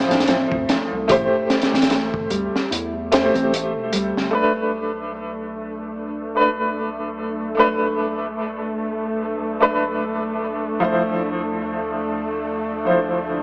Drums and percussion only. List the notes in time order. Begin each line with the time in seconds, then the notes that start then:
0.00 snare
0.11 snare, closed hi-hat
0.20 snare, closed hi-hat
0.27 snare, closed hi-hat
0.52 kick
0.69 snare, closed hi-hat
1.09 kick, closed hi-hat
1.50 snare, closed hi-hat
1.62 snare, closed hi-hat
1.75 snare, closed hi-hat
1.82 snare, closed hi-hat
1.90 snare, closed hi-hat
2.14 kick
2.30 closed hi-hat
2.56 snare
2.72 closed hi-hat
3.12 snare, closed hi-hat
3.35 closed hi-hat
3.54 closed hi-hat
3.93 closed hi-hat
4.17 snare